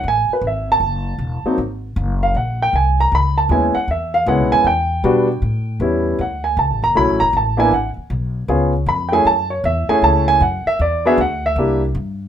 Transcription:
0.04 A1
0.08 G#5
0.29 muted upright bass stroke
0.33 B4
0.41 G#1
0.47 E5
0.72 A5
0.80 F#1
1.18 E1
1.44 F#3 A#3 C4 D#4, muted upright bass stroke
1.58 G#1
1.96 F#1
2.23 F5
2.35 A#1 F#5
2.62 G5
2.73 C2 G#5
3.00 A#5
3.12 C#2 B5
3.38 A5
3.49 D#2 G#3 B3 C#4 E4 G#5
3.75 F#5, muted upright bass stroke
3.88 E2 E5
4.14 F5
4.26 C#2 G#3 B3 C#4 E4 F#5
4.39 B1
4.52 G#1 G#5
4.62 E2 F#5
4.67 G5
5.04 B2 G3 B3 D4 F#4
5.42 A2
5.80 E2 G3 B3 C#4 E4
6.19 D2 F#5
6.44 G#5
6.57 C#2 A5
6.70 A1
6.82 F#1 A#5
6.95 B1 F#3 A3 C#4 E4 B5
7.08 A1
7.20 F#1 A#5
7.33 A1 A5
7.57 A#3 B3 D4 E4 G#5
7.71 G#1 F#5
7.97 muted upright bass stroke
8.10 B1
8.48 C#2 B3 C#4 F4 G#4
8.86 F2 B5
9.09 A3 C#4 G5
9.13 E4 G#4 G#5
9.25 F#2 A5
9.50 C#5
9.64 E2 E5
9.89 A3 C#4 E4 G#4 G#5, muted upright bass stroke
10.02 C#2 A5
10.28 G#5
10.40 F#2 F#5
10.66 E5, muted upright bass stroke
10.79 E2 D5
11.05 B3 D4 F#4 G#4 E5
11.18 D2 F#5
11.46 E5
11.56 C2 A#3 D4 E4 G4
11.95 G2

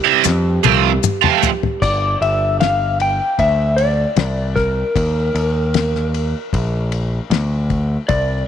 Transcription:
Already playing: G2 G3
0.04 C3 G3 C4 E4
0.24 F2, muted overdriven electric guitar stroke, snare, maracas
0.64 C2 F3 A3 C4 F4, high tom, maracas
1.03 mid tom, maracas
1.22 F3 A3 C4 F4, mid tom
1.43 floor tom, maracas
1.63 floor tom
1.82 G1 D5, kick, crash
2.21 G1 E5, ride
2.60 F5, snare, ride
3.00 G5, ride
3.39 D2 E5, kick, ride
3.76 D5, ride
4.16 C2, snare, ride
4.56 A#4, kick, snare, ride
4.96 D#2, kick, ride
5.35 D#2, ride
5.74 snare, ride
5.95 snare
6.14 ride
6.53 A#1, kick, ride
6.92 ride
7.30 D2, snare, ride
7.70 kick, ride
8.09 C2 D5, kick, ride

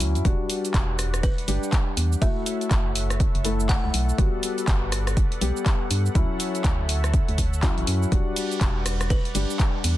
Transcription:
Already playing: F#3 C#4 E4
0.00 D2, open hi-hat, cabasa
0.15 F#2, closed hi-hat, cabasa
0.25 E1 G3 D4 F#4 B4 D5 F#5, kick, closed hi-hat, cabasa
0.50 open hi-hat, cabasa
0.65 closed hi-hat, cabasa
0.74 E1, kick, clap, closed hi-hat, cabasa
0.99 cross-stick, open hi-hat, cabasa
1.14 cross-stick, closed hi-hat, cabasa
1.23 B4, kick, closed hi-hat, cabasa
1.38 closed hi-hat
1.48 G1 G3 D4 G4, open hi-hat, cabasa
1.63 cabasa
1.73 kick, clap, closed hi-hat, cabasa
1.97 E2, open hi-hat, cabasa
2.12 cabasa
2.21 F#1 A3 E4 F#4 A4 C#5 E5 F#5, kick, closed hi-hat, cabasa
2.46 open hi-hat, cabasa
2.61 closed hi-hat, cabasa
2.71 F#1, kick, clap, closed hi-hat, cabasa
2.96 open hi-hat, cabasa
3.10 cross-stick, closed hi-hat, cabasa
3.20 kick, closed hi-hat, cabasa
3.35 F#1, closed hi-hat
3.44 A3 E4 A4, open hi-hat, cabasa
3.60 cabasa
3.69 F#5, kick, clap, closed hi-hat, cabasa
3.84 C#2
3.94 B1, open hi-hat, cabasa
4.09 cabasa
4.18 G1 G3 B3 F#4 B4 D5, kick, closed hi-hat, cabasa
4.43 open hi-hat, cabasa
4.58 closed hi-hat, cabasa
4.68 G1, kick, clap, closed hi-hat, cabasa
4.92 cross-stick, open hi-hat, cabasa
5.07 cross-stick, closed hi-hat, cabasa
5.17 kick, closed hi-hat, cabasa
5.32 closed hi-hat
5.41 B1 G3 B3 G4, open hi-hat, cabasa
5.57 cabasa
5.66 kick, clap, closed hi-hat, cabasa
5.91 G2, open hi-hat, cabasa
6.06 cabasa
6.15 D2 F#3 C#4 E4 A4 C#5 E5, kick, closed hi-hat, cabasa
6.40 open hi-hat, cabasa
6.55 closed hi-hat, cabasa
6.64 D2, kick, clap, closed hi-hat, cabasa
6.89 open hi-hat, cabasa
7.04 cross-stick, closed hi-hat, cabasa
7.14 kick, closed hi-hat, cabasa
7.28 D2, closed hi-hat
7.38 kick, open hi-hat, cabasa
7.53 cabasa
7.63 F#3 C#4 E4, kick, clap, closed hi-hat, cabasa
7.78 A1, closed hi-hat
7.87 F#2, open hi-hat, cabasa
8.03 cabasa
8.12 E1 G3 D4 F#4 B4 D5, kick, closed hi-hat, cabasa
8.36 open hi-hat, ride, cabasa
8.51 closed hi-hat, cabasa
8.61 E1, kick, clap, closed hi-hat, cabasa
8.86 cross-stick, open hi-hat, ride, cabasa
9.01 cross-stick, closed hi-hat, cabasa
9.10 B4, kick, closed hi-hat, cabasa
9.25 closed hi-hat
9.34 G1 G3 D4 G4, open hi-hat, ride, cabasa
9.50 cabasa
9.59 kick, clap, closed hi-hat, cabasa
9.84 E2, open hi-hat, ride, cabasa

